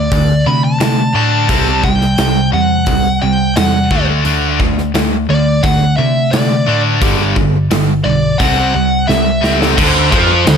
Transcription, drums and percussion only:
0.12 kick, open hi-hat
0.81 snare, open hi-hat
1.49 kick, open hi-hat
1.84 kick
2.01 snare
2.18 snare, open hi-hat
2.86 kick, open hi-hat
3.56 snare, open hi-hat
3.91 kick
4.25 open hi-hat
4.60 kick
4.78 snare
4.95 snare, open hi-hat
5.64 kick, open hi-hat
6.33 snare, open hi-hat
7.02 kick, open hi-hat
7.36 kick
7.71 snare, open hi-hat
8.40 kick, open hi-hat
9.09 snare
9.44 snare
9.62 snare
9.78 kick, crash
10.12 kick, crash
10.47 snare, crash

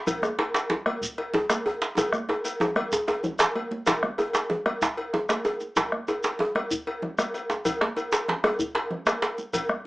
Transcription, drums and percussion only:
0.07 bombo low, cowbell, low conga, djembe bass, shekere
0.22 bombo rim, high conga, djembe tone, shekere
0.39 cowbell, djembe slap, djembe tone
0.54 bombo rim, cowbell, djembe slap, shekere
0.70 djembe slap, low conga, djembe bass
0.86 bombo rim, cowbell, high conga
1.01 bombo low, shekere
1.18 bombo rim, cowbell, djembe slap
1.34 bombo rim, djembe slap, djembe tone, low conga, djembe bass
1.50 bombo rim, cowbell, djembe slap, high conga, shekere
1.66 cowbell, djembe bass
1.82 djembe slap, shekere
1.97 bombo low, cowbell, djembe tone, low conga, djembe bass, shekere
2.13 bombo rim, high conga, shekere
2.29 bombo rim, cowbell, djembe tone, high conga
2.44 cowbell, djembe slap, high conga, shekere
2.60 djembe tone, low conga, djembe bass, shekere
2.76 bombo rim, cowbell, high conga
2.92 bombo low, djembe tone, shekere
3.08 bombo rim, cowbell, djembe slap, high conga, djembe tone, shekere
3.24 djembe tone, djembe bass, low conga, shekere
3.39 bombo rim, cowbell, djembe slap, low conga, shekere
3.55 bombo rim, cowbell, djembe slap, high conga
3.71 djembe slap, high conga
3.87 bombo rim, bombo low, cowbell, djembe slap, djembe bass, low conga, shekere
4.03 bombo rim, high conga
4.18 cowbell, djembe tone, high conga, shekere
4.33 bombo rim, cowbell, djembe slap, high conga, shekere
4.50 bombo rim, djembe tone, low conga
4.66 bombo rim, cowbell, high conga
4.82 bombo low, djembe slap, high conga, djembe bass, shekere
4.97 cowbell, djembe slap
5.13 bombo rim, djembe tone, low conga
5.29 bombo rim, cowbell, djembe slap, high conga, shekere
5.45 bombo rim, cowbell, djembe tone, high conga, shekere
5.60 djembe slap, high conga, shekere
5.76 bombo rim, bombo low, cowbell, djembe slap, djembe bass, low conga, shekere
5.92 bombo rim, high conga
6.08 cowbell, djembe tone, shekere
6.23 bombo rim, cowbell, djembe slap, high conga, shekere
6.39 bombo rim, djembe tone, low conga
6.55 bombo rim, cowbell, high conga
6.71 bombo low, high conga, djembe bass, shekere
6.87 cowbell, djembe slap
7.02 bombo rim, djembe tone, low conga
7.18 bombo rim, cowbell, high conga, shekere
7.34 bombo rim, cowbell, high conga, shekere
7.50 djembe slap, djembe tone, high conga, shekere
7.65 bombo rim, bombo low, cowbell, djembe bass, low conga, shekere
7.81 bombo rim, djembe slap, high conga
7.96 cowbell, djembe tone, shekere
8.12 bombo rim, cowbell, djembe slap, high conga, shekere
8.28 bombo rim, djembe slap, low conga
8.44 bombo rim, cowbell, high conga, djembe tone
8.59 bombo low, high conga, djembe bass, shekere
8.75 cowbell, djembe slap
8.91 bombo rim, low conga
9.06 bombo rim, cowbell, djembe slap, high conga, shekere
9.22 bombo rim, cowbell, djembe slap, high conga, shekere
9.38 djembe slap, high conga, shekere
9.53 bombo low, cowbell, djembe slap, low conga, djembe bass, shekere
9.69 bombo rim, high conga

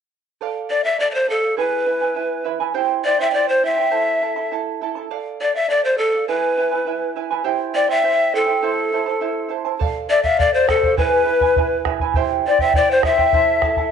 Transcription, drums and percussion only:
9.81 bombo low
10.24 bombo low
10.39 bombo low
10.69 bombo rim, bombo low
10.83 bombo low
10.98 bombo low
11.41 bombo low
11.56 bombo low
11.85 bombo rim, bombo low
12.00 bombo low
12.14 bombo low
12.59 bombo low
12.74 bombo low
13.03 bombo rim, bombo low
13.18 bombo low
13.33 bombo low
13.62 bombo rim, bombo low
13.76 bombo low

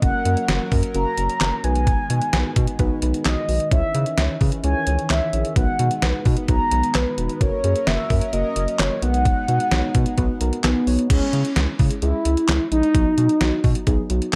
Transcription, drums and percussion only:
0.02 kick, closed hi-hat
0.25 closed hi-hat
0.37 closed hi-hat
0.48 snare, closed hi-hat
0.72 kick, open hi-hat
0.83 closed hi-hat
0.94 closed hi-hat
1.18 closed hi-hat
1.30 closed hi-hat
1.41 snare, clap, closed hi-hat
1.64 closed hi-hat
1.75 closed hi-hat
1.87 kick, closed hi-hat
2.10 closed hi-hat
2.22 closed hi-hat
2.33 snare, closed hi-hat
2.56 kick, closed hi-hat
2.67 closed hi-hat
2.79 kick, closed hi-hat
3.02 closed hi-hat
3.14 closed hi-hat
3.25 snare, clap, closed hi-hat
3.49 open hi-hat
3.60 closed hi-hat
3.71 kick, closed hi-hat
3.95 closed hi-hat
4.06 closed hi-hat
4.18 snare, closed hi-hat
4.41 kick, open hi-hat
4.52 closed hi-hat
4.64 closed hi-hat
4.87 closed hi-hat
4.99 closed hi-hat
5.10 snare, clap, closed hi-hat
5.33 closed hi-hat
5.45 closed hi-hat
5.56 kick, closed hi-hat
5.79 closed hi-hat
5.91 closed hi-hat
6.02 snare, closed hi-hat
6.25 kick, open hi-hat
6.37 closed hi-hat
6.48 kick, closed hi-hat
6.71 closed hi-hat
6.83 closed hi-hat
6.95 snare, clap, closed hi-hat
7.18 closed hi-hat
7.29 closed hi-hat
7.41 kick, closed hi-hat
7.64 closed hi-hat
7.76 closed hi-hat
7.87 snare, closed hi-hat
8.10 kick, open hi-hat
8.21 closed hi-hat
8.33 closed hi-hat
8.56 closed hi-hat
8.68 closed hi-hat
8.79 snare, clap, closed hi-hat
9.02 closed hi-hat
9.14 closed hi-hat
9.25 kick, closed hi-hat
9.48 closed hi-hat
9.60 closed hi-hat
9.72 snare, closed hi-hat
9.95 kick, closed hi-hat
10.06 closed hi-hat
10.18 kick, closed hi-hat
10.41 closed hi-hat
10.53 closed hi-hat
10.64 snare, clap, closed hi-hat
10.87 open hi-hat
10.99 closed hi-hat
11.10 kick, closed hi-hat, crash
11.33 closed hi-hat
11.45 closed hi-hat
11.56 snare, closed hi-hat
11.79 kick, open hi-hat
11.91 closed hi-hat
12.02 closed hi-hat
12.25 closed hi-hat
12.37 closed hi-hat
12.48 snare, clap, closed hi-hat
12.72 closed hi-hat
12.83 closed hi-hat
12.95 kick, closed hi-hat
13.18 closed hi-hat
13.29 closed hi-hat
13.41 snare, closed hi-hat
13.64 kick, open hi-hat
13.75 closed hi-hat
13.87 kick, closed hi-hat
14.10 closed hi-hat
14.22 closed hi-hat

